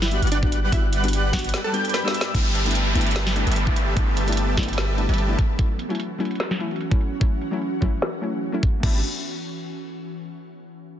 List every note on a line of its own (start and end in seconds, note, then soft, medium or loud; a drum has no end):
0.00 0.20 G1 loud
0.00 0.20 G3 medium
0.00 0.22 E4 medium
0.00 0.20 G4 medium
0.00 0.20 B4 medium
0.00 0.20 D5 medium
0.00 0.23 E5 medium
0.00 0.20 F#5 loud
0.00 0.20 F#6 medium
0.00 snare medium
0.10 0.21 G3 medium
0.10 0.21 B3 medium
0.10 0.22 D4 medium
0.10 0.22 F#4 medium
0.10 closed hi-hat medium
0.22 0.70 G1 loud
0.22 0.70 G3 medium
0.22 0.70 G4 medium
0.22 0.70 B4 medium
0.22 0.70 D5 medium
0.22 0.70 F#5 loud
0.22 0.70 F#6 medium
0.22 closed hi-hat medium
0.27 closed hi-hat medium
0.32 0.60 D4 medium
0.32 0.60 D5 loud
0.32 closed hi-hat medium
0.42 0.51 G3 medium
0.42 0.51 B3 medium
0.42 0.52 D4 medium
0.42 0.52 F#4 loud
0.42 kick loud
0.52 closed hi-hat medium
0.71 1.31 G1 loud
0.71 0.82 G3 medium
0.71 1.31 G3 medium
0.71 0.82 B3 medium
0.71 0.83 D4 medium
0.71 0.93 E4 medium
0.71 0.83 F#4 medium
0.71 1.31 G4 medium
0.71 1.31 B4 medium
0.71 1.31 D5 medium
0.71 0.93 E5 medium
0.71 1.31 F#5 loud
0.71 1.31 F#6 loud
0.71 kick loud
0.71 closed hi-hat medium
0.93 closed hi-hat medium
1.03 1.12 G3 medium
1.03 1.12 B3 medium
1.03 1.12 D4 medium
1.03 1.13 F#4 loud
1.03 closed hi-hat medium
1.08 closed hi-hat medium
1.13 closed hi-hat medium
1.32 1.53 G1 loud
1.32 1.43 G3 loud
1.32 1.72 G3 medium
1.32 1.43 B3 medium
1.32 1.43 D4 medium
1.32 1.54 F#4 medium
1.32 1.44 F#4 loud
1.32 1.72 G4 medium
1.32 1.72 B4 medium
1.32 1.72 D5 medium
1.32 1.54 F#5 medium
1.32 1.72 F#5 loud
1.32 kick medium
1.32 snare medium
1.32 closed hi-hat medium
1.39 closed hi-hat medium
1.44 closed hi-hat soft
1.49 closed hi-hat medium
1.54 snare loud
1.54 closed hi-hat medium
1.64 1.85 A4 medium
1.64 1.85 A5 medium
1.72 2.02 G3 medium
1.72 2.02 G3 loud
1.72 2.02 B3 medium
1.72 2.02 D4 medium
1.72 2.03 F#4 medium
1.72 2.02 G4 medium
1.72 2.02 B4 medium
1.72 2.02 D5 medium
1.72 2.02 G5 loud
1.72 2.02 G6 loud
1.72 closed hi-hat medium
1.85 closed hi-hat medium
1.89 closed hi-hat medium
1.94 2.22 B4 medium
1.94 2.22 B5 loud
1.94 snare medium
1.94 closed hi-hat medium
2.04 2.13 G3 loud
2.04 2.32 G3 medium
2.04 2.13 B3 medium
2.04 2.14 D4 medium
2.04 2.14 F#4 loud
2.04 2.32 G4 medium
2.04 2.32 B4 medium
2.04 2.32 D5 medium
2.04 2.32 E5 medium
2.04 2.32 E6 medium
2.08 snare medium
2.14 closed hi-hat medium
2.21 snare loud
2.33 2.93 G1 loud
2.33 8.79 E3 medium
2.33 2.93 G3 medium
2.33 2.44 A3 medium
2.33 2.44 B3 medium
2.33 5.36 B3 medium
2.33 2.45 D4 medium
2.33 2.45 E4 medium
2.33 2.93 G4 medium
2.33 5.36 A4 medium
2.33 2.93 B4 medium
2.33 2.93 E5 medium
2.33 2.93 A5 medium
2.33 kick loud
2.33 closed hi-hat medium
2.33 crash medium
2.33 downlifter medium
2.55 closed hi-hat medium
2.65 2.74 A3 medium
2.65 2.74 B3 medium
2.65 2.74 D4 medium
2.65 2.75 E4 loud
2.65 closed hi-hat soft
2.71 closed hi-hat medium
2.75 closed hi-hat medium
2.94 3.45 G1 loud
2.94 3.44 G3 medium
2.94 3.05 A3 loud
2.94 3.05 B3 medium
2.94 3.06 D4 medium
2.94 3.06 E4 loud
2.94 3.44 G4 medium
2.94 3.44 B4 medium
2.94 3.44 E5 medium
2.94 3.44 A5 loud
2.94 closed hi-hat soft
3.01 closed hi-hat medium
3.06 closed hi-hat soft
3.11 closed hi-hat medium
3.16 snare loud
3.16 closed hi-hat medium
3.27 snare medium
3.35 3.45 A3 medium
3.35 3.46 B3 medium
3.35 3.46 D4 medium
3.35 3.46 E4 medium
3.35 closed hi-hat medium
3.47 3.95 G1 medium
3.47 3.94 G3 medium
3.47 3.94 G4 medium
3.47 3.94 B4 medium
3.47 3.94 E5 medium
3.47 3.94 A5 medium
3.47 closed hi-hat medium
3.52 closed hi-hat medium
3.56 closed hi-hat medium
3.66 3.75 A3 medium
3.66 3.76 B3 medium
3.66 3.76 D4 medium
3.66 3.76 E4 loud
3.66 kick loud
3.76 closed hi-hat medium
3.96 4.56 G1 loud
3.96 4.55 G3 medium
3.96 4.06 A3 medium
3.96 4.07 B3 medium
3.96 4.07 D4 medium
3.96 4.07 E4 medium
3.96 4.55 G4 medium
3.96 4.55 B4 medium
3.96 4.55 E5 medium
3.96 4.55 A5 loud
3.96 kick loud
3.96 closed hi-hat medium
4.17 closed hi-hat medium
4.27 4.36 A3 medium
4.27 4.36 B3 medium
4.27 4.37 D4 medium
4.27 4.37 E4 loud
4.27 closed hi-hat medium
4.32 closed hi-hat medium
4.37 closed hi-hat medium
4.57 5.07 G1 loud
4.57 5.06 G3 medium
4.57 4.67 A3 loud
4.57 4.67 B3 medium
4.57 4.68 D4 medium
4.57 4.68 E4 loud
4.57 5.06 G4 medium
4.57 5.06 B4 medium
4.57 5.06 E5 medium
4.57 5.06 A5 loud
4.57 kick medium
4.57 snare medium
4.57 closed hi-hat soft
4.63 closed hi-hat medium
4.68 closed hi-hat soft
4.73 closed hi-hat medium
4.78 snare loud
4.78 closed hi-hat medium
4.97 5.08 A3 medium
4.97 5.08 B3 medium
4.97 5.08 D4 medium
4.97 5.09 E4 medium
4.97 closed hi-hat medium
5.09 5.35 G1 loud
5.09 5.37 G3 medium
5.09 5.37 G4 medium
5.09 5.37 B4 medium
5.09 5.37 E5 medium
5.09 5.37 A5 loud
5.09 closed hi-hat soft
5.14 closed hi-hat medium
5.18 closed hi-hat medium
5.28 5.37 A3 medium
5.28 5.37 B3 medium
5.28 5.37 D4 medium
5.28 5.38 E4 loud
5.39 8.80 C#4 medium
5.39 8.80 F#4 medium
5.39 kick loud
5.39 closed hi-hat medium
5.58 5.68 F#3 medium
5.58 5.69 A3 medium
5.58 5.69 C#4 medium
5.58 5.69 E4 medium
5.58 kick loud
5.58 closed hi-hat medium
5.79 closed hi-hat medium
5.89 5.98 F#3 medium
5.89 5.98 A3 medium
5.89 5.99 C#4 medium
5.89 5.99 E4 loud
5.89 closed hi-hat soft
5.95 closed hi-hat medium
6.00 closed hi-hat medium
6.18 6.29 F#3 loud
6.18 6.30 A3 medium
6.18 6.30 C#4 medium
6.18 6.30 E4 loud
6.18 closed hi-hat soft
6.25 closed hi-hat medium
6.31 closed hi-hat soft
6.35 closed hi-hat medium
6.40 snare loud
6.40 closed hi-hat medium
6.51 snare medium
6.59 6.70 F#3 medium
6.59 6.70 A3 medium
6.59 6.70 C#4 medium
6.59 6.71 E4 medium
6.59 closed hi-hat medium
6.71 closed hi-hat soft
6.76 closed hi-hat medium
6.81 closed hi-hat medium
6.90 7.00 F#3 medium
6.90 7.00 A3 medium
6.90 7.00 C#4 medium
6.90 7.01 E4 loud
6.90 kick loud
7.01 closed hi-hat medium
7.20 7.31 F#3 medium
7.20 7.31 A3 medium
7.20 7.31 C#4 medium
7.20 7.32 E4 medium
7.20 kick loud
7.20 closed hi-hat medium
7.42 closed hi-hat medium
7.51 7.60 F#3 medium
7.51 7.61 A3 medium
7.51 7.61 C#4 medium
7.51 7.61 E4 loud
7.51 closed hi-hat soft
7.57 closed hi-hat medium
7.62 closed hi-hat medium
7.81 7.91 F#3 medium
7.81 7.92 A3 medium
7.81 7.92 C#4 medium
7.81 7.92 E4 loud
7.81 kick medium
7.81 snare medium
7.81 closed hi-hat soft
7.88 closed hi-hat medium
7.93 closed hi-hat soft
7.98 closed hi-hat medium
8.02 snare loud
8.02 closed hi-hat medium
8.21 8.50 F#3 medium
8.21 8.51 A3 medium
8.21 8.51 C#4 medium
8.21 8.51 E4 medium
8.21 closed hi-hat medium
8.33 closed hi-hat soft
8.38 closed hi-hat medium
8.43 closed hi-hat medium
8.52 8.62 F#3 loud
8.52 8.62 A3 medium
8.52 8.62 C#4 medium
8.52 8.63 E4 loud
8.63 kick loud
8.80 9.02 G1 loud
8.80 8.99 G3 medium
8.80 8.97 A3 medium
8.80 8.98 B3 medium
8.80 8.99 D4 medium
8.80 8.99 G4 medium
8.80 8.99 B4 medium
8.80 8.98 E5 medium
8.80 8.98 A5 medium
8.80 kick loud
8.80 crash medium
8.86 9.00 E4 medium